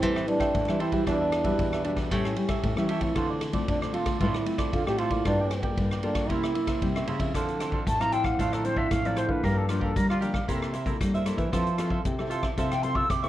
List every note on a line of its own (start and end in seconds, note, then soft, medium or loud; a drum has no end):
0.00 0.51 A2 soft
0.00 0.25 E3 medium
0.00 0.24 G3 medium
0.00 0.27 C4 medium
0.00 0.24 C4 medium
0.00 0.24 E4 medium
0.00 0.14 A4 medium
0.00 0.14 C5 medium
0.00 0.15 E5 medium
0.00 0.15 G5 medium
0.00 kick medium
0.00 ride soft
0.16 0.27 C5 soft
0.16 0.27 E5 soft
0.16 0.28 G5 soft
0.16 cross-stick medium
0.27 0.52 G3 medium
0.27 0.53 C4 medium
0.27 0.82 D4 loud
0.27 0.53 E4 medium
0.27 muted cavaquinho stroke soft
0.27 ride soft
0.40 0.66 C5 soft
0.40 0.66 E5 medium
0.40 0.66 G5 medium
0.40 kick medium
0.40 cross-stick medium
0.40 ride soft
0.54 0.66 A2 medium
0.54 1.04 E3 medium
0.54 kick medium
0.54 ride soft
0.68 1.01 E3 medium
0.68 0.90 G3 medium
0.68 0.90 C4 medium
0.68 0.90 E4 medium
0.68 0.79 C5 soft
0.68 0.79 E5 soft
0.68 0.80 G5 soft
0.68 cross-stick medium
0.79 1.07 E4 medium
0.79 0.92 A4 medium
0.79 0.93 C5 medium
0.79 0.92 E5 medium
0.79 0.91 G5 medium
0.79 ride soft
0.92 1.41 G3 medium
0.92 1.41 D4 medium
0.92 1.41 F#4 medium
0.92 1.06 C5 soft
0.92 1.05 E5 soft
0.92 1.05 G5 soft
0.92 kick medium
0.92 ride soft
1.07 1.51 E2 medium
1.07 1.57 E3 medium
1.07 1.19 D4 medium
1.07 1.82 D4 loud
1.07 1.19 G4 medium
1.07 1.19 B4 medium
1.07 1.19 E5 medium
1.07 kick medium
1.07 cross-stick medium
1.07 ride soft
1.21 1.32 G4 soft
1.21 1.32 B4 soft
1.21 1.32 E5 soft
1.32 muted cavaquinho stroke soft
1.32 cross-stick medium
1.32 ride soft
1.44 1.80 G3 medium
1.44 1.81 D4 medium
1.44 1.81 F#4 medium
1.44 1.71 G4 soft
1.44 1.71 B4 medium
1.44 1.70 E5 medium
1.44 kick medium
1.44 ride soft
1.58 2.12 E2 medium
1.58 2.09 B2 medium
1.58 kick medium
1.58 ride soft
1.73 1.84 G4 soft
1.73 1.84 B4 soft
1.73 1.85 E5 soft
1.73 cross-stick medium
1.84 2.07 G3 soft
1.84 2.10 D4 medium
1.84 2.07 D4 medium
1.84 1.97 D4 medium
1.84 2.07 F#4 medium
1.84 2.10 G4 medium
1.84 2.10 B4 medium
1.84 2.11 E5 medium
1.84 ride soft
1.97 kick medium
1.97 cross-stick medium
1.97 ride medium
2.11 2.61 A2 medium
2.11 2.34 A2 medium
2.11 2.33 G3 medium
2.11 2.86 C#4 medium
2.11 2.34 C#4 medium
2.11 2.34 E4 medium
2.11 2.24 G4 medium
2.11 2.24 A4 medium
2.11 2.24 C#5 medium
2.11 2.24 E5 medium
2.11 kick medium
2.11 ride soft
2.25 2.36 A4 soft
2.25 2.36 C#5 soft
2.25 2.36 E5 soft
2.25 cross-stick medium
2.36 2.72 G3 medium
2.36 2.72 C#4 medium
2.36 2.73 E4 medium
2.36 muted cavaquinho stroke soft
2.36 ride soft
2.49 2.76 A4 medium
2.49 2.75 C#5 medium
2.49 2.75 E5 medium
2.49 kick medium
2.49 cross-stick medium
2.49 ride medium
2.63 2.75 A2 loud
2.63 3.13 E3 medium
2.63 kick medium
2.63 ride medium
2.77 3.11 E3 medium
2.77 2.99 G3 medium
2.77 2.99 C#4 medium
2.77 2.99 E4 medium
2.77 2.88 A4 soft
2.77 2.89 C#5 soft
2.77 2.89 E5 medium
2.77 cross-stick medium
2.89 3.02 G4 medium
2.89 3.02 A4 medium
2.89 3.01 C#5 medium
2.89 3.00 E5 medium
2.89 ride soft
3.00 3.50 A3 medium
3.00 3.50 C4 medium
3.00 3.51 F4 medium
3.00 3.15 A4 soft
3.00 3.15 C#5 soft
3.00 kick medium
3.00 ride soft
3.15 3.65 D3 medium
3.15 3.61 D3 loud
3.15 3.28 F4 medium
3.15 3.28 A4 medium
3.15 3.29 C5 medium
3.15 3.29 D5 medium
3.15 kick medium
3.15 cross-stick medium
3.15 ride soft
3.30 3.41 A4 soft
3.30 3.41 C5 soft
3.30 3.41 D5 soft
3.41 muted cavaquinho stroke soft
3.41 cross-stick medium
3.41 ride soft
3.52 3.89 A3 medium
3.52 3.89 C4 medium
3.52 3.89 F4 medium
3.52 3.80 A4 soft
3.52 3.80 C5 medium
3.52 3.79 D5 medium
3.52 kick medium
3.52 ride soft
3.68 4.18 A2 medium
3.68 4.21 D3 medium
3.68 3.80 D4 medium
3.68 kick medium
3.68 ride soft
3.82 3.93 A4 soft
3.82 3.93 C5 soft
3.82 3.93 D5 soft
3.82 cross-stick medium
3.93 4.09 A3 medium
3.93 4.09 C4 medium
3.93 4.18 F4 medium
3.93 4.19 F4 soft
3.93 4.09 F4 medium
3.93 4.19 A4 soft
3.93 4.20 C5 soft
3.93 4.20 D5 medium
3.93 ride soft
4.06 kick medium
4.06 cross-stick medium
4.06 ride medium
4.20 4.43 A2 medium
4.20 4.70 D3 medium
4.20 4.42 A3 medium
4.20 4.43 C4 medium
4.20 4.74 E4 medium
4.20 4.33 F4 medium
4.20 4.43 F4 medium
4.20 4.33 A4 medium
4.20 4.33 C5 medium
4.20 4.33 D5 medium
4.20 kick medium
4.20 ride soft
4.34 4.45 C5 soft
4.34 4.46 D5 soft
4.34 cross-stick medium
4.45 4.81 A3 medium
4.45 4.81 C4 medium
4.45 4.82 F4 medium
4.45 muted cavaquinho stroke soft
4.45 ride soft
4.58 4.85 A4 medium
4.58 4.84 C5 medium
4.58 4.84 D5 medium
4.58 kick medium
4.58 cross-stick medium
4.58 ride soft
4.72 5.22 A2 medium
4.72 4.84 D3 medium
4.72 4.86 F4 medium
4.72 kick medium
4.72 ride soft
4.86 5.20 A2 medium
4.86 5.08 A3 medium
4.86 5.08 C4 medium
4.86 5.08 F4 medium
4.86 5.00 G4 loud
4.86 4.98 A4 soft
4.86 4.98 C5 soft
4.86 4.99 D5 soft
4.86 cross-stick medium
4.98 5.25 F4 medium
4.98 5.11 F4 medium
4.98 5.11 A4 medium
4.98 5.10 C5 medium
4.98 5.10 D5 medium
4.98 ride soft
5.10 5.60 A#3 medium
5.10 5.60 F4 medium
5.10 5.60 A4 medium
5.10 5.24 A4 soft
5.10 5.24 C5 soft
5.10 5.24 D5 soft
5.10 kick medium
5.10 ride soft
5.25 5.70 G2 loud
5.25 5.75 G3 medium
5.25 5.75 D4 medium
5.25 5.37 F4 medium
5.25 5.38 A#4 medium
5.25 5.38 D5 medium
5.25 5.38 G5 medium
5.25 kick medium
5.25 cross-stick medium
5.25 ride soft
5.40 5.50 A#4 soft
5.40 5.51 D5 soft
5.40 5.51 G5 soft
5.51 muted cavaquinho stroke soft
5.51 cross-stick medium
5.51 ride soft
5.63 5.99 A#3 medium
5.63 5.99 F4 medium
5.63 5.99 A4 medium
5.63 5.90 A#4 soft
5.63 5.89 D5 medium
5.63 5.89 G5 medium
5.63 kick medium
5.63 ride soft
5.78 6.30 G2 medium
5.78 6.27 D3 medium
5.78 kick medium
5.78 ride soft
5.91 6.02 A#4 soft
5.91 6.03 D5 soft
5.91 6.03 G5 soft
5.91 cross-stick medium
6.02 6.25 A#3 medium
6.02 6.30 D4 medium
6.02 6.29 F4 soft
6.02 6.25 F4 medium
6.02 6.26 A4 medium
6.02 6.29 A#4 soft
6.02 6.29 D5 medium
6.02 6.29 G5 medium
6.02 ride soft
6.15 kick medium
6.15 cross-stick medium
6.15 ride medium
6.29 6.79 C3 medium
6.29 6.52 C3 medium
6.29 6.52 A#3 medium
6.29 6.52 C#4 medium
6.29 7.08 E4 loud
6.29 6.42 E4 medium
6.29 6.52 E4 medium
6.29 6.42 A#4 medium
6.29 6.42 C5 medium
6.29 6.43 E5 medium
6.29 kick medium
6.29 ride soft
6.44 6.54 A#4 soft
6.44 6.55 C5 soft
6.44 6.55 E5 soft
6.44 cross-stick medium
6.55 6.91 A#3 medium
6.55 6.91 C#4 medium
6.55 6.91 E4 medium
6.55 muted cavaquinho stroke soft
6.55 ride soft
6.67 6.94 A#4 medium
6.67 6.94 C5 medium
6.67 6.93 E5 medium
6.67 kick medium
6.67 cross-stick medium
6.67 ride medium
6.82 7.06 C3 medium
6.82 7.32 G3 medium
6.82 kick medium
6.82 ride soft
6.95 7.17 A#3 medium
6.95 7.18 C#4 medium
6.95 7.18 E4 medium
6.95 7.06 A#4 soft
6.95 7.07 C5 soft
6.95 7.07 E5 medium
6.95 cross-stick medium
7.07 7.32 C#3 medium
7.07 7.20 E4 medium
7.07 7.20 A#4 medium
7.07 7.19 C5 medium
7.07 7.18 E5 medium
7.07 ride soft
7.19 7.57 F3 medium
7.19 7.58 C4 medium
7.19 7.58 E4 medium
7.19 7.33 A#4 soft
7.19 7.33 C5 soft
7.19 7.33 E5 soft
7.19 kick medium
7.19 ride soft
7.33 7.84 D3 medium
7.33 7.79 D3 medium
7.33 7.59 D4 medium
7.33 7.59 A4 medium
7.33 7.60 C5 medium
7.33 7.60 F5 medium
7.33 kick medium
7.33 cross-stick medium
7.33 closed hi-hat medium
7.48 closed hi-hat soft
7.59 7.95 F3 medium
7.59 7.95 C4 medium
7.59 7.71 D4 medium
7.59 7.95 E4 medium
7.59 7.72 A4 soft
7.59 7.72 C5 medium
7.59 7.72 F5 medium
7.59 cross-stick medium
7.59 closed hi-hat medium
7.72 7.82 D4 medium
7.72 7.82 A4 medium
7.72 7.82 C5 medium
7.72 7.83 F5 medium
7.72 kick medium
7.86 8.36 A2 medium
7.86 8.31 A2 medium
7.86 8.02 A5 medium
7.86 kick medium
7.86 closed hi-hat medium
7.99 8.35 F3 medium
7.99 8.35 C4 medium
7.99 8.35 E4 medium
7.99 8.11 A4 soft
7.99 8.12 C5 soft
7.99 8.12 F5 soft
7.99 8.13 A#5 medium
7.99 cross-stick medium
7.99 closed hi-hat soft
8.12 8.24 D4 medium
8.12 8.25 A4 medium
8.12 8.24 C5 medium
8.12 8.23 F5 medium
8.12 8.26 G5 medium
8.12 closed hi-hat soft
8.24 8.38 A4 soft
8.24 8.38 C5 soft
8.24 8.37 F5 soft
8.24 8.41 F#5 medium
8.24 kick medium
8.24 cross-stick medium
8.38 8.84 A2 medium
8.38 8.88 D3 soft
8.38 8.61 F3 medium
8.38 8.61 C4 medium
8.38 8.63 D4 medium
8.38 8.61 E4 medium
8.38 8.64 A4 medium
8.38 8.64 C5 medium
8.38 8.54 F5 medium
8.38 8.65 F5 medium
8.38 kick medium
8.38 closed hi-hat medium
8.53 8.66 A4 medium
8.53 cross-stick medium
8.53 closed hi-hat soft
8.64 9.00 F3 medium
8.64 9.00 C4 medium
8.64 8.75 D4 soft
8.64 9.00 E4 medium
8.64 8.75 A4 soft
8.64 8.79 C5 medium
8.64 8.76 C5 medium
8.64 8.76 F5 medium
8.64 closed hi-hat soft
8.76 8.86 D4 medium
8.76 8.87 A4 medium
8.76 8.87 C5 medium
8.76 8.93 E5 medium
8.76 8.87 F5 medium
8.76 kick medium
8.91 9.41 A2 medium
8.91 9.25 A2 medium
8.91 9.07 F5 medium
8.91 kick medium
8.91 cross-stick medium
8.91 closed hi-hat medium
9.05 9.27 F3 medium
9.05 9.27 C4 medium
9.05 9.27 E4 medium
9.05 9.16 A4 medium
9.05 9.16 C5 medium
9.05 9.18 D5 medium
9.05 9.17 F5 medium
9.05 closed hi-hat soft
9.16 9.29 D4 soft
9.16 9.29 A4 medium
9.16 9.31 C5 medium
9.16 9.28 C5 medium
9.16 9.27 F5 medium
9.16 cross-stick medium
9.16 closed hi-hat soft
9.27 9.40 D3 medium
9.27 9.65 F3 medium
9.27 9.65 A#3 medium
9.27 9.65 D4 medium
9.27 9.42 A4 soft
9.27 9.45 B4 medium
9.27 9.42 C5 soft
9.27 9.42 F5 soft
9.27 kick medium
9.43 9.88 G2 loud
9.43 9.94 G2 medium
9.43 9.67 G4 medium
9.43 9.68 A#4 medium
9.43 9.59 A#4 medium
9.43 9.68 D5 medium
9.43 9.69 F5 medium
9.43 kick medium
9.43 cross-stick medium
9.43 closed hi-hat medium
9.57 9.68 A4 medium
9.68 10.03 F3 medium
9.68 10.04 A#3 medium
9.68 10.04 D4 medium
9.68 9.83 F4 soft
9.68 9.79 G4 soft
9.68 9.79 A#4 medium
9.68 9.80 D5 medium
9.68 9.80 F5 medium
9.68 cross-stick medium
9.68 closed hi-hat soft
9.80 9.91 G4 medium
9.80 9.97 A4 medium
9.80 9.91 A#4 medium
9.80 9.91 D5 medium
9.80 9.91 F5 medium
9.80 kick medium
9.96 10.46 D3 medium
9.96 10.41 G3 medium
9.96 10.08 A#4 medium
9.96 kick medium
9.96 closed hi-hat medium
10.09 10.17 F4 medium
10.09 10.20 A#4 soft
10.09 10.20 D5 soft
10.09 10.20 F5 soft
10.09 cross-stick medium
10.20 10.37 F3 medium
10.20 10.37 A#3 medium
10.20 10.38 D4 medium
10.20 10.33 G4 medium
10.20 10.33 A#4 medium
10.20 10.32 D5 medium
10.20 10.32 F5 medium
10.20 closed hi-hat soft
10.33 10.47 A#4 soft
10.33 10.47 D5 soft
10.33 10.46 F5 soft
10.33 kick medium
10.33 cross-stick medium
10.48 10.98 C3 medium
10.48 10.93 C3 medium
10.48 10.73 A#3 soft
10.48 10.72 E4 medium
10.48 10.73 E4 medium
10.48 10.73 A4 medium
10.48 10.72 A#4 medium
10.48 10.73 C5 medium
10.48 10.73 E5 medium
10.48 kick medium
10.48 closed hi-hat medium
10.62 cross-stick medium
10.73 10.85 E4 soft
10.73 10.85 A#4 medium
10.73 10.85 C5 medium
10.73 10.85 E5 medium
10.73 closed hi-hat soft
10.86 11.22 A#3 medium
10.86 10.96 E4 medium
10.86 11.22 E4 medium
10.86 11.22 A4 medium
10.86 10.96 A#4 medium
10.86 10.96 C5 medium
10.86 10.96 E5 medium
10.86 kick medium
10.86 closed hi-hat soft
11.01 11.51 G2 medium
11.01 11.34 G3 medium
11.01 kick medium
11.01 cross-stick medium
11.01 closed hi-hat medium
11.14 11.25 A#4 medium
11.14 11.25 C5 medium
11.14 11.25 E5 medium
11.14 closed hi-hat soft
11.25 11.43 A#3 medium
11.25 11.38 E4 soft
11.25 11.44 E4 medium
11.25 11.44 A4 medium
11.25 11.38 A#4 medium
11.25 11.37 C5 medium
11.25 11.36 E5 medium
11.25 cross-stick medium
11.25 closed hi-hat medium
11.37 11.49 E3 medium
11.37 11.52 A#4 soft
11.37 11.51 C5 soft
11.37 11.51 E5 soft
11.37 kick medium
11.37 closed hi-hat soft
11.52 12.03 F3 medium
11.52 11.98 F3 loud
11.52 11.68 C4 medium
11.52 11.68 E4 medium
11.52 11.77 F4 medium
11.52 11.77 A4 medium
11.52 11.69 A4 medium
11.52 11.77 C5 medium
11.52 11.78 E5 medium
11.52 kick medium
11.52 cross-stick medium
11.52 closed hi-hat medium
11.67 closed hi-hat soft
11.78 12.14 C4 medium
11.78 12.14 E4 medium
11.78 11.89 F4 medium
11.78 11.89 A4 medium
11.78 12.14 A4 medium
11.78 11.90 C5 medium
11.78 11.90 E5 medium
11.78 cross-stick medium
11.78 closed hi-hat soft
11.90 12.00 F4 medium
11.90 12.00 A4 medium
11.90 12.01 C5 medium
11.90 12.01 E5 medium
11.90 kick medium
12.05 12.50 C3 medium
12.05 12.55 C3 medium
12.05 kick medium
12.05 closed hi-hat medium
12.19 12.54 C4 medium
12.19 12.54 E4 medium
12.19 12.54 A4 medium
12.19 12.29 A4 soft
12.19 12.30 C5 soft
12.19 12.30 E5 soft
12.19 cross-stick medium
12.19 closed hi-hat soft
12.30 12.43 F4 medium
12.30 12.43 A4 medium
12.30 12.43 C5 medium
12.30 12.42 E5 medium
12.30 closed hi-hat soft
12.43 12.56 A4 soft
12.43 12.56 C5 soft
12.43 12.56 E5 soft
12.43 kick medium
12.43 cross-stick medium
12.57 13.02 C3 medium
12.57 13.07 F3 medium
12.57 12.73 C4 medium
12.57 12.73 E4 medium
12.57 12.81 F4 medium
12.57 12.82 A4 medium
12.57 12.73 A4 medium
12.57 12.82 C5 medium
12.57 12.83 E5 medium
12.57 kick medium
12.57 closed hi-hat medium
12.71 12.84 G5 medium
12.71 cross-stick medium
12.71 closed hi-hat soft
12.82 13.08 C4 medium
12.82 13.08 E4 medium
12.82 12.94 F4 medium
12.82 12.94 A4 medium
12.82 13.08 A4 medium
12.82 12.94 C5 medium
12.82 12.94 E5 medium
12.82 12.97 C6 medium
12.82 closed hi-hat soft
12.95 13.05 F4 medium
12.95 13.05 A4 medium
12.95 13.05 C5 medium
12.95 13.05 E5 medium
12.95 13.11 E6 medium
12.95 kick medium
13.09 13.29 C3 medium
13.09 13.25 D6 medium
13.09 kick medium
13.09 cross-stick medium
13.09 closed hi-hat medium
13.22 13.29 C4 medium
13.22 13.29 E4 medium
13.22 13.29 A4 medium
13.22 13.29 C5 medium
13.22 13.29 E5 medium
13.22 13.29 C#6 medium
13.22 closed hi-hat soft